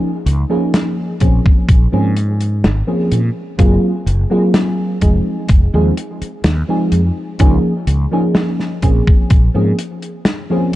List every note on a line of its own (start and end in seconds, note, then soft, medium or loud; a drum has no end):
0.00 0.10 F3 medium
0.00 0.10 A#3 medium
0.00 0.11 C#4 medium
0.00 0.11 D#4 medium
0.00 0.11 G#4 loud
0.26 0.43 C#2 loud
0.26 closed hi-hat medium
0.49 1.15 F3 medium
0.49 1.15 A#3 medium
0.49 1.15 C#4 medium
0.49 1.15 D#4 medium
0.49 1.16 G#4 loud
0.74 snare loud
0.74 closed hi-hat medium
1.20 1.38 A#1 medium
1.20 1.87 F3 medium
1.20 1.87 A#3 medium
1.20 1.87 C4 medium
1.20 1.87 C#4 medium
1.20 1.88 G#4 medium
1.20 kick medium
1.20 closed hi-hat medium
1.46 kick loud
1.69 1.86 A#1 medium
1.69 kick loud
1.69 closed hi-hat medium
1.92 2.66 G#2 medium
1.92 2.12 F3 medium
1.92 2.12 A#3 medium
1.92 2.12 C4 medium
1.92 2.13 C#4 medium
1.92 2.13 G#4 loud
2.17 closed hi-hat medium
2.41 closed hi-hat medium
2.64 2.81 G#1 medium
2.64 snare loud
2.64 closed hi-hat medium
2.87 3.19 F3 medium
2.87 3.19 A#3 medium
2.87 3.19 C4 medium
2.87 3.20 C#4 medium
2.87 3.20 G#4 loud
3.12 3.29 A#2 medium
3.12 closed hi-hat medium
3.58 3.76 F#1 loud
3.58 3.91 F#3 medium
3.58 3.91 A#3 medium
3.58 3.91 C4 medium
3.58 3.92 F4 medium
3.58 3.92 G#4 loud
3.58 kick loud
3.58 closed hi-hat medium
4.06 4.24 F#1 loud
4.06 closed hi-hat medium
4.30 4.96 F#3 medium
4.30 4.96 A#3 medium
4.30 4.96 C4 medium
4.30 4.96 F4 medium
4.30 4.97 G#4 loud
4.54 snare loud
4.54 closed hi-hat medium
5.01 5.19 F1 medium
5.01 5.68 F3 medium
5.01 5.68 G#3 medium
5.01 5.68 C4 medium
5.01 5.68 D#4 medium
5.01 5.69 G#4 medium
5.01 kick medium
5.01 closed hi-hat medium
5.49 5.67 F1 medium
5.49 kick loud
5.49 closed hi-hat medium
5.74 5.90 D#2 medium
5.74 5.93 F3 medium
5.74 5.93 G#3 medium
5.74 5.94 C4 medium
5.74 5.94 D#4 medium
5.74 5.94 G#4 loud
5.97 closed hi-hat medium
6.21 muted fretless electric bass stroke soft
6.21 closed hi-hat medium
6.44 6.62 D#2 medium
6.44 snare loud
6.44 closed hi-hat medium
6.68 7.00 F3 medium
6.68 7.01 G#3 medium
6.68 7.01 C4 medium
6.68 7.01 D#4 medium
6.68 7.01 G#4 loud
6.92 7.09 F2 medium
6.92 closed hi-hat medium
7.39 7.57 C#2 loud
7.39 7.72 F3 loud
7.39 7.72 A#3 medium
7.39 7.72 C#4 medium
7.39 7.73 D#4 medium
7.39 7.73 G#4 loud
7.39 kick loud
7.39 closed hi-hat medium
7.87 8.05 C#2 loud
7.87 closed hi-hat medium
8.11 8.77 F3 medium
8.11 8.77 A#3 medium
8.11 8.77 C#4 medium
8.11 8.78 D#4 medium
8.11 8.78 G#4 loud
8.35 snare loud
8.35 closed hi-hat medium
8.60 snare soft
8.82 9.00 A#1 medium
8.82 9.49 F3 medium
8.82 9.49 A#3 medium
8.82 9.49 C4 medium
8.82 9.49 C#4 medium
8.82 9.50 G#4 medium
8.82 kick medium
8.82 closed hi-hat medium
9.07 kick loud
9.30 9.48 A#1 medium
9.30 kick loud
9.30 closed hi-hat medium
9.54 9.71 G#2 medium
9.54 9.74 F3 medium
9.54 9.74 A#3 medium
9.54 9.74 C4 medium
9.54 9.74 C#4 medium
9.54 9.75 G#4 loud
9.78 closed hi-hat medium
10.02 closed hi-hat soft
10.25 snare loud
10.25 closed hi-hat medium
10.50 10.76 F3 medium
10.50 10.76 A#3 medium
10.50 10.76 C4 medium
10.50 10.76 C#4 medium
10.50 10.76 G#4 loud